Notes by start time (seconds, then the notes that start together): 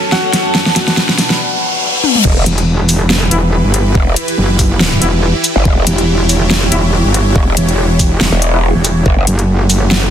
Already playing: F#2 F#3 C#4 F#4 A4 C#5 A5, riser
0.12 F#4 F#5, snare
0.33 snare, closed hi-hat
0.55 B2 D4 B4, snare
0.66 snare
0.76 snare, closed hi-hat
0.88 snare, closed hi-hat
0.97 snare
1.09 snare
1.18 snare, open hi-hat
1.30 snare
1.40 reverse cymbal
2.04 high tom
2.15 mid tom
2.25 E1 E3 E4 G4 B4, kick, crash, impact
2.46 E1, closed hi-hat
2.58 closed hi-hat
2.89 open hi-hat, shaker
3.10 snare
3.31 E1 E3 B3 E4, closed hi-hat
3.64 G1
3.74 closed hi-hat
3.95 E1, kick
4.16 closed hi-hat
4.28 closed hi-hat
4.38 F#1
4.59 kick, open hi-hat, shaker
4.80 snare
5.01 E1 E3 B3 E4, closed hi-hat
5.44 closed hi-hat, shaker
5.56 G1
5.65 E1 C#5, kick
5.87 E1, closed hi-hat
5.98 closed hi-hat
6.29 open hi-hat, shaker
6.51 snare
6.72 E1 E3 B3 E4, closed hi-hat
7.05 G1
7.14 closed hi-hat
7.36 E1, kick
7.57 E1, closed hi-hat
7.69 closed hi-hat
7.99 kick, open hi-hat, shaker
8.21 E1, snare
8.32 E1
8.42 closed hi-hat
8.54 E3 B3 E4
8.75 E1
8.85 closed hi-hat, shaker
9.06 F#1 A3 C#4 F#4, kick
9.27 F#1, closed hi-hat
9.39 closed hi-hat
9.70 open hi-hat, shaker
9.91 snare